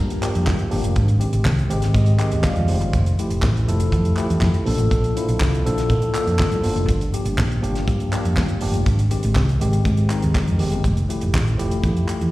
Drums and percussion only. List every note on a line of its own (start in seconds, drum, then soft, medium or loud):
0.10 closed hi-hat soft
0.23 clap medium
0.23 closed hi-hat medium
0.35 closed hi-hat soft
0.47 kick loud
0.47 snare loud
0.47 clap medium
0.59 closed hi-hat soft
0.71 open hi-hat medium
0.84 closed hi-hat soft
0.96 kick loud
0.96 closed hi-hat medium
1.08 closed hi-hat soft
1.21 closed hi-hat medium
1.33 closed hi-hat soft
1.45 kick loud
1.45 snare loud
1.45 clap loud
1.59 closed hi-hat soft
1.70 closed hi-hat medium
1.82 snare soft
1.82 closed hi-hat medium
1.95 kick loud
1.95 closed hi-hat medium
2.06 closed hi-hat soft
2.19 clap medium
2.19 closed hi-hat medium
2.32 closed hi-hat soft
2.43 kick loud
2.43 snare loud
2.43 clap medium
2.56 closed hi-hat soft
2.68 open hi-hat medium
2.81 closed hi-hat soft
2.93 kick loud
2.93 closed hi-hat medium
3.06 closed hi-hat soft
3.19 closed hi-hat medium
3.30 closed hi-hat soft
3.42 kick loud
3.42 snare loud
3.42 clap loud
3.57 closed hi-hat soft
3.69 closed hi-hat medium
3.80 closed hi-hat medium
3.92 kick loud
3.92 closed hi-hat medium
4.05 closed hi-hat soft
4.17 clap medium
4.17 closed hi-hat medium
4.30 closed hi-hat soft
4.41 kick loud
4.41 snare loud
4.41 clap medium
4.54 closed hi-hat soft
4.66 open hi-hat medium
4.78 closed hi-hat soft
4.91 kick medium
4.91 closed hi-hat medium
5.04 closed hi-hat soft
5.17 closed hi-hat medium
5.29 closed hi-hat soft
5.40 kick loud
5.40 snare loud
5.40 clap loud
5.55 closed hi-hat soft
5.67 closed hi-hat medium
5.78 snare soft
5.78 closed hi-hat medium
5.90 kick loud
5.90 closed hi-hat medium
6.02 closed hi-hat soft
6.15 clap medium
6.15 closed hi-hat medium
6.27 closed hi-hat soft
6.39 kick loud
6.39 snare loud
6.39 clap medium
6.52 closed hi-hat soft
6.63 open hi-hat medium
6.76 closed hi-hat soft
6.89 kick loud
6.89 closed hi-hat medium
7.01 closed hi-hat soft
7.14 closed hi-hat medium
7.26 closed hi-hat soft
7.38 kick loud
7.38 snare loud
7.38 clap loud
7.52 closed hi-hat soft
7.64 closed hi-hat medium
7.75 snare soft
7.75 closed hi-hat soft
7.88 kick loud
7.88 closed hi-hat medium
8.00 closed hi-hat soft
8.13 clap medium
8.13 closed hi-hat medium
8.25 closed hi-hat soft
8.37 kick loud
8.37 snare loud
8.37 clap medium
8.48 closed hi-hat soft
8.61 open hi-hat medium
8.74 closed hi-hat medium
8.86 kick loud
8.86 closed hi-hat medium
8.99 closed hi-hat soft
9.11 closed hi-hat medium
9.23 closed hi-hat soft
9.35 kick loud
9.35 snare loud
9.35 clap loud
9.49 closed hi-hat soft
9.61 closed hi-hat medium
9.73 closed hi-hat soft
9.85 kick loud
9.85 closed hi-hat medium
9.97 closed hi-hat soft
10.10 clap medium
10.10 closed hi-hat medium
10.22 closed hi-hat soft
10.35 kick loud
10.35 snare medium
10.35 clap medium
10.47 closed hi-hat soft
10.59 open hi-hat medium
10.72 closed hi-hat soft
10.84 kick medium
10.84 closed hi-hat medium
10.97 closed hi-hat soft
11.10 closed hi-hat medium
11.21 closed hi-hat soft
11.34 kick loud
11.34 snare loud
11.34 clap loud
11.47 closed hi-hat soft
11.59 closed hi-hat medium
11.71 closed hi-hat soft
11.84 kick loud
11.84 closed hi-hat medium
11.97 closed hi-hat soft
12.08 clap medium
12.08 closed hi-hat medium
12.21 closed hi-hat soft